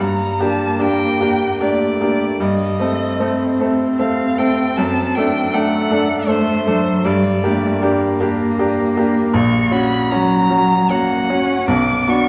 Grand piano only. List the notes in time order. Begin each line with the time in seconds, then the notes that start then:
0.00 G2
0.39 A#3 D4 G4
0.79 A#3 D4 G4
1.20 A#3 D4 G4
1.60 A#3 D4 G4
2.01 A#3 D4 G4
2.40 G2
2.79 A3 C4 A4
3.20 A3 C4 A4
3.60 A3 C4 A4
3.99 A3 C4 A4
4.38 A3 C4 A4
4.78 F#2
5.17 A3 D4 A4
5.53 A3 D4 A4
5.90 A3 D4 A4
6.27 A3 D4 A4
6.67 A3 D4 A4
7.06 G2
7.44 A#3 D4 G4
7.81 A#3 D4 G4
8.20 A#3 D4 G4
8.59 A#3 D4 G4
8.97 A#3 D4 G4
9.34 A#1
9.71 C#4 F#4
10.12 C#4 F#4
10.50 C#4 F#4
10.90 C#4 F#4
11.30 C#4 F#4
11.68 B1
12.08 B3 D4 F#4